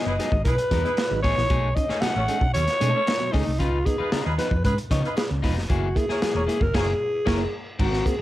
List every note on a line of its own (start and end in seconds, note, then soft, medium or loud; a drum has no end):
0.00 0.11 B3 medium
0.00 0.44 D#5 medium
0.06 0.17 F#1 medium
0.06 0.15 E4 medium
0.06 0.15 G#4 medium
0.06 0.15 B4 medium
0.06 muted clean electric guitar stroke medium
0.19 0.29 F#3 medium
0.19 0.29 G#3 medium
0.19 0.33 B3 medium
0.19 0.29 D#4 medium
0.19 0.32 D#4 medium
0.19 0.31 G#4 medium
0.19 snare soft
0.19 closed hi-hat medium
0.32 0.43 G#1 medium
0.32 0.38 G#3 soft
0.32 0.38 D#4 soft
0.32 muted clean electric guitar stroke soft
0.32 kick medium
0.44 0.57 B1 medium
0.44 0.55 E3 medium
0.44 0.55 E4 medium
0.44 0.55 G#4 medium
0.44 1.20 B4 loud
0.44 0.55 B4 medium
0.44 muted clean electric guitar stroke soft
0.44 kick medium
0.44 closed hi-hat medium
0.58 muted clean electric guitar stroke soft
0.58 closed hi-hat medium
0.70 0.82 E2 medium
0.70 0.81 F#3 medium
0.70 0.82 G#3 medium
0.70 0.89 B3 medium
0.70 0.82 D#4 medium
0.70 0.84 D#4 medium
0.70 0.84 A#4 medium
0.70 kick loud
0.70 snare soft
0.70 closed hi-hat medium
0.84 0.90 G#3 soft
0.84 0.90 D#4 soft
0.84 1.02 E4 medium
0.84 1.02 G#4 medium
0.84 1.02 B4 medium
0.84 muted clean electric guitar stroke soft
0.84 closed hi-hat soft
0.97 muted clean electric guitar stroke soft
0.97 snare loud
0.97 closed hi-hat medium
1.10 1.22 G#1 medium
1.10 1.21 F#3 medium
1.10 1.21 G#3 medium
1.10 1.21 D#4 medium
1.10 muted clean electric guitar stroke soft
1.22 1.35 A1 medium
1.22 1.41 B3 medium
1.22 1.36 D#4 medium
1.22 1.36 G#4 loud
1.22 1.76 C#5 loud
1.22 kick loud
1.22 snare soft
1.22 open hi-hat medium
1.37 1.48 A#1 medium
1.37 1.47 E3 medium
1.37 muted clean electric guitar stroke soft
1.37 snare soft
1.50 1.72 B1 loud
1.50 1.60 B2 medium
1.50 1.60 F#3 medium
1.50 1.68 A3 medium
1.50 1.68 D#4 medium
1.50 1.68 G#4 loud
1.50 kick loud
1.50 closed hi-hat medium
1.75 1.86 C#4 medium
1.75 1.86 D#4 medium
1.75 2.02 D#5 medium
1.75 muted clean electric guitar stroke soft
1.75 kick medium
1.75 closed hi-hat medium
1.89 2.01 A3 medium
1.89 1.98 C#4 medium
1.89 2.02 D#4 medium
1.89 2.03 G#4 medium
1.89 1.98 A4 medium
1.89 1.98 C#5 medium
1.89 muted fingered electric bass stroke soft
1.89 snare soft
2.01 2.13 B2 medium
2.01 2.13 F#3 medium
2.01 2.20 A3 medium
2.01 2.15 D#4 medium
2.01 2.14 G#4 medium
2.01 2.53 F#5 loud
2.01 muted fingered electric bass stroke soft
2.01 snare loud
2.01 closed hi-hat medium
2.16 2.27 A1 medium
2.16 2.25 C#4 medium
2.16 2.25 A4 medium
2.16 2.25 C#5 loud
2.16 muted clean electric guitar stroke soft
2.28 2.39 G#3 medium
2.28 2.42 A3 medium
2.28 2.39 A3 medium
2.28 2.39 C#4 medium
2.28 2.41 D#4 medium
2.28 2.39 D#4 medium
2.28 2.41 G#4 medium
2.28 closed hi-hat medium
2.41 2.53 B1 medium
2.41 2.47 C#4 soft
2.41 2.47 D#4 soft
2.41 muted clean electric guitar stroke soft
2.41 kick medium
2.53 2.66 D#2 medium
2.53 2.65 B2 medium
2.53 2.65 F#3 medium
2.53 2.63 C#4 medium
2.53 2.63 A4 medium
2.53 3.34 C#5 loud
2.53 2.63 C#5 medium
2.53 muted clean electric guitar stroke soft
2.53 closed hi-hat medium
2.67 muted clean electric guitar stroke soft
2.67 snare soft
2.67 closed hi-hat medium
2.80 2.92 B2 medium
2.80 2.91 G#3 medium
2.80 3.01 A3 medium
2.80 2.91 A3 medium
2.80 2.91 C#4 medium
2.80 2.91 D#4 medium
2.80 2.93 D#4 medium
2.80 2.93 A4 medium
2.80 closed hi-hat medium
2.94 3.00 C#4 soft
2.94 3.12 C#4 medium
2.94 2.99 D#4 soft
2.94 3.12 A4 medium
2.94 3.11 C#5 loud
2.94 muted clean electric guitar stroke medium
3.06 3.12 C#4 soft
3.06 3.12 D#4 soft
3.06 muted clean electric guitar stroke soft
3.06 snare loud
3.06 closed hi-hat medium
3.19 3.31 B2 soft
3.19 3.31 F#3 medium
3.19 muted clean electric guitar stroke soft
3.32 3.45 C#2 medium
3.32 3.44 G#3 medium
3.32 3.51 A3 medium
3.32 3.44 A3 medium
3.32 3.44 C#4 medium
3.32 3.60 D#4 loud
3.32 3.46 D#4 medium
3.32 3.44 D#4 medium
3.32 3.45 G#4 loud
3.32 kick medium
3.32 snare soft
3.32 open hi-hat medium
3.46 3.60 C2 medium
3.46 muted clean electric guitar stroke soft
3.59 3.82 C#2 loud
3.59 3.70 C#3 medium
3.59 3.77 D#4 medium
3.59 3.87 F4 loud
3.59 3.78 F4 medium
3.59 3.78 B4 medium
3.59 kick loud
3.59 closed hi-hat medium
3.85 3.96 B3 medium
3.85 3.97 D#4 medium
3.85 4.11 G#4 medium
3.85 muted clean electric guitar stroke soft
3.85 kick medium
3.85 closed hi-hat medium
3.98 4.11 D#4 medium
3.98 4.12 F4 medium
3.98 4.08 F4 medium
3.98 4.08 G#4 medium
3.98 4.12 B4 medium
3.98 4.08 B4 loud
3.98 muted fingered electric bass stroke soft
4.12 4.22 C#3 medium
4.12 4.32 D#4 medium
4.12 4.26 F4 medium
4.12 4.24 G#4 medium
4.12 4.24 B4 medium
4.12 muted fingered electric bass stroke soft
4.12 snare loud
4.12 closed hi-hat medium
4.26 4.37 D#2 medium
4.26 4.35 F4 medium
4.26 4.34 G#4 medium
4.26 4.35 B4 loud
4.26 muted clean electric guitar stroke medium
4.38 4.49 F3 medium
4.38 4.49 B3 medium
4.38 4.52 D#4 medium
4.38 4.49 D#4 medium
4.38 4.51 F4 medium
4.38 4.63 B4 medium
4.38 4.50 B4 medium
4.38 snare soft
4.38 closed hi-hat medium
4.51 4.62 F2 medium
4.51 4.57 B3 soft
4.51 4.57 D#4 soft
4.51 muted clean electric guitar stroke soft
4.51 kick medium
4.64 4.76 G#2 medium
4.64 4.75 C#3 medium
4.64 4.73 F4 medium
4.64 4.73 G#4 medium
4.64 4.76 B4 medium
4.64 4.73 B4 medium
4.64 muted clean electric guitar stroke soft
4.64 kick loud
4.64 closed hi-hat medium
4.78 muted clean electric guitar stroke soft
4.78 closed hi-hat medium
4.90 5.02 C#3 medium
4.90 5.01 F3 medium
4.90 5.01 B3 medium
4.90 5.09 D#4 medium
4.90 5.01 D#4 medium
4.90 5.03 F4 medium
4.90 5.03 C#5 loud
4.90 5.15 D#5 medium
4.90 kick loud
4.90 snare soft
4.90 closed hi-hat loud
5.03 5.09 B3 soft
5.03 5.09 D#4 soft
5.03 5.22 F4 loud
5.03 5.22 G#4 medium
5.03 5.22 B4 loud
5.03 muted clean electric guitar stroke soft
5.03 closed hi-hat soft
5.16 5.23 B3 soft
5.16 5.22 D#4 soft
5.16 5.29 G#4 medium
5.16 muted clean electric guitar stroke soft
5.16 snare loud
5.16 closed hi-hat medium
5.30 5.42 C#2 medium
5.30 5.40 C#3 medium
5.30 muted clean electric guitar stroke soft
5.42 5.57 E1 medium
5.42 5.53 F3 medium
5.42 5.54 B3 medium
5.42 5.61 D#4 medium
5.42 5.54 D#4 medium
5.42 5.57 F4 medium
5.42 5.56 B4 medium
5.42 kick loud
5.42 snare soft
5.42 open hi-hat medium
5.57 5.68 F1 medium
5.57 muted clean electric guitar stroke soft
5.57 snare soft
5.69 5.92 F#1 loud
5.69 5.80 F#3 medium
5.69 5.87 A#3 medium
5.69 5.88 E4 loud
5.69 5.98 F#4 medium
5.69 5.88 G#4 medium
5.69 kick loud
5.69 closed hi-hat medium
5.95 6.06 A#3 medium
5.95 6.06 E4 medium
5.95 6.64 G#4 loud
5.95 muted clean electric guitar stroke soft
5.95 kick medium
5.95 closed hi-hat medium
6.09 6.21 A#3 medium
6.09 6.21 E4 medium
6.09 6.22 G#4 medium
6.09 6.18 G#4 medium
6.09 6.18 A#4 medium
6.09 6.18 C#5 medium
6.09 muted fingered electric bass stroke soft
6.09 snare soft
6.21 6.32 F#3 medium
6.21 6.40 A#3 medium
6.21 6.35 E4 medium
6.21 6.34 G#4 medium
6.21 muted fingered electric bass stroke soft
6.21 snare loud
6.21 closed hi-hat medium
6.35 6.46 E1 medium
6.35 6.44 G#4 medium
6.35 6.44 A#4 medium
6.35 6.44 C#5 loud
6.35 muted clean electric guitar stroke soft
6.47 6.58 G#3 medium
6.47 6.62 A#3 medium
6.47 6.58 A#3 medium
6.47 6.58 E4 medium
6.47 6.60 E4 medium
6.47 6.59 G#4 medium
6.47 closed hi-hat medium
6.60 6.72 F#1 medium
6.60 6.66 A#3 soft
6.60 6.66 E4 soft
6.60 6.77 A#4 loud
6.60 muted clean electric guitar stroke medium
6.60 kick medium
6.74 6.92 F#1 loud
6.74 6.92 A#3 medium
6.74 6.92 E4 loud
6.74 6.93 G#4 loud
6.74 6.88 G#4 loud
6.74 7.54 G#4 loud
6.74 6.88 A#4 loud
6.74 6.88 C#5 loud
6.74 kick loud
6.74 snare loud
6.74 crash medium
7.25 7.45 F#1 medium
7.25 7.44 A#3 loud
7.25 7.44 E4 loud
7.25 7.45 E4 loud
7.25 7.40 G#4 loud
7.25 7.39 A#4 loud
7.25 7.45 A#4 loud
7.25 7.39 C#5 loud
7.25 kick loud
7.25 snare loud
7.25 crash medium
7.79 8.02 G#1 medium
7.79 7.89 G#2 medium
7.79 7.90 D#3 medium
7.79 8.03 C4 medium
7.79 8.04 F#4 loud
7.79 8.08 F#4 medium
7.79 8.04 A#4 loud
7.79 kick loud
7.79 crash medium
7.93 7.98 C4 soft
7.93 7.98 F#4 soft
7.93 snare soft
8.05 8.16 A#3 medium
8.05 8.16 C4 medium
8.05 8.16 F#4 medium
8.05 8.22 G#4 medium
8.05 kick medium
8.05 closed hi-hat medium